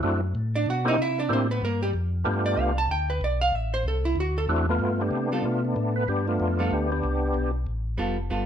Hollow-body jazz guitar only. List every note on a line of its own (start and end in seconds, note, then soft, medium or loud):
0.56 0.67 D4 medium
0.56 0.67 D5 loud
0.70 0.87 F#4 medium
0.70 0.87 F#5 medium
0.88 0.99 D#4 medium
0.88 0.99 D#5 loud
1.02 1.20 E4 medium
1.02 1.19 E5 loud
1.20 1.31 D4 medium
1.20 1.31 D5 medium
1.33 1.51 C4 medium
1.33 1.51 C5 medium
1.51 1.63 B3 medium
1.51 1.62 B4 loud
1.65 1.83 A#3 medium
1.65 1.82 A#4 medium
1.83 1.90 G3 medium
1.83 1.90 G4 loud
2.46 2.60 D5 loud
2.60 2.78 F5 medium
2.78 2.90 A5 loud
2.91 3.09 G5 loud
3.10 3.21 B4 medium
3.24 3.41 D5 medium
3.41 3.55 F5 loud
3.55 3.73 E5 loud
3.74 3.85 C5 loud
3.88 4.05 A4 medium
4.05 4.17 E4 medium
4.20 4.37 F#4 medium
4.38 4.45 A4 loud
5.32 5.43 G3 medium
5.32 5.43 B3 medium
5.32 5.43 F4 medium
5.32 5.43 A4 medium
6.59 6.70 G3 medium
6.59 6.71 B3 medium
6.59 6.71 F4 medium
6.59 6.71 A4 medium
7.97 8.16 G3 medium
7.97 8.16 B3 medium
7.97 8.17 F4 medium
7.97 8.17 A4 medium
8.30 8.46 G3 medium
8.30 8.46 B3 medium
8.30 8.46 F4 medium
8.30 8.46 A4 medium